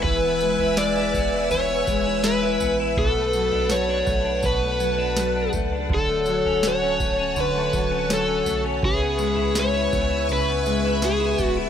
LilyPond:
<<
  \new Staff \with { instrumentName = "String machine" } { \time 4/4 \key d \lydian \tempo 4 = 82 << { <e'' gis'' e'''>1 | <fis'' a''>1 | <fis'' a''>1 | <e'' gis'' cis'''>1 | } \\ { b'1~ | b'1 | cis''1 | b'1 | } >> }
  \new Staff \with { instrumentName = "Electric slide guitar" } { \time 4/4 \key d \lydian b'4 d''4 cis''4 b'8. r16 | a'4 cis''4 b'4. r8 | a'4 cis''4 b'4 a'8. r16 | gis'4 cis''4 b'4 gis'8. r16 | }
  \new Staff \with { instrumentName = "Clean electric guitar" } { \time 4/4 \key d \lydian e16 b16 gis16 e'16 gis16 e'16 b16 e'16 e16 b16 gis16 e'16 gis16 e'16 b16 e'16 | b,16 a16 fis16 d'16 fis16 d'16 a16 d'16 b,16 a16 fis16 d'16 fis16 d'16 a16 d'16 | d16 a16 fis16 cis'16 fis16 cis'16 a16 cis'16 d16 a16 fis16 cis'16 fis16 cis'16 a16 cis'16 | cis16 b16 gis16 e'16 gis16 e'16 b16 e'16 cis16 b16 gis16 e'16 gis16 e'16 b16 e'16 | }
  \new Staff \with { instrumentName = "Sub bass" } { \clef bass \time 4/4 \key d \lydian e,,8. e,,4.~ e,,16 e,,4 a,,8 | b,,4. b,,2 cis,8 | d,,8. d,,4.~ d,,16 d,,4 b,,8 | cis,4. cis,2 d,,8 | }
  \new DrumStaff \with { instrumentName = "Drums" } \drummode { \time 4/4 <bd tomfh>8 tamb16 tomfh16 <sn tamb>8 <bd tamb tomfh>8 <tamb tomfh>8 <bd tamb>8 <sn tamb>8 <tamb tomfh>8 | <bd tomfh>8 tamb16 tomfh16 <sn tamb>8 <bd tamb tomfh>8 <bd tamb tomfh>8 tamb8 <sn tamb>8 <bd tamb tomfh>8 | <bd tomfh>8 tamb16 tomfh16 <sn tamb>8 <bd tamb tomfh>8 <tamb tomfh>8 <bd tamb>8 <sn tamb>8 <tamb tomfh>8 | <bd tomfh>8 tamb16 tomfh16 <sn tamb>8 <bd tamb tomfh>8 <tamb tomfh>8 tamb8 <sn tamb>8 <bd tamb tomfh>8 | }
>>